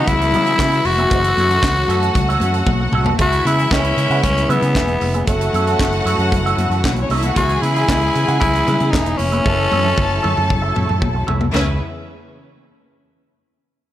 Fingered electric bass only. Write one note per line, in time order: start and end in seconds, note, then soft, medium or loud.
0.07 0.34 C#2 loud
0.33 0.53 C#3 loud
0.59 0.79 C#3 loud
0.85 1.05 F1 loud
1.11 1.31 F#1 loud
1.37 1.57 F#2 loud
1.63 1.83 C#2 loud
1.88 2.08 F#2 loud
2.16 2.35 C#2 loud
2.41 2.61 F#2 loud
2.66 2.87 B1 medium
2.92 3.12 C2 loud
3.19 3.39 C#2 loud
3.45 3.65 C#3 loud
3.71 3.91 C#2 loud
3.97 4.07 C#3 loud
4.10 4.20 C#3 loud
4.24 4.44 C#2 loud
4.49 4.59 C#3 loud
4.62 4.77 C#3 medium
4.75 4.95 E1 medium
5.01 5.21 F1 medium
5.28 5.48 F#1 loud
5.53 5.74 F#2 medium
5.80 6.00 F#1 loud
6.05 6.15 F#2 loud
6.18 6.28 F#2 loud
6.32 6.52 F#1 loud
6.57 6.67 F#2 loud
6.70 6.80 F#2 loud
6.84 7.04 B1 loud
7.09 7.30 C2 medium
7.36 7.56 C#2 loud
7.62 7.82 C#3 loud
7.89 8.09 C#2 loud
8.15 8.25 C#3 loud
8.28 8.38 C#3 loud
8.42 8.61 C#2 loud
8.68 8.77 C#3 loud
8.81 8.94 C#3 medium
8.93 9.13 E1 medium
9.19 9.39 F1 medium
9.46 9.66 F#1 loud
9.72 9.92 F#2 loud
9.98 10.18 F#1 loud
10.24 10.34 F#2 medium
10.37 10.47 F#2 loud
10.50 10.70 F#1 loud
10.77 10.87 F#2 loud
10.90 10.99 F#2 medium
11.02 11.22 B1 medium
11.29 11.48 C2 medium
11.53 11.78 C#2 loud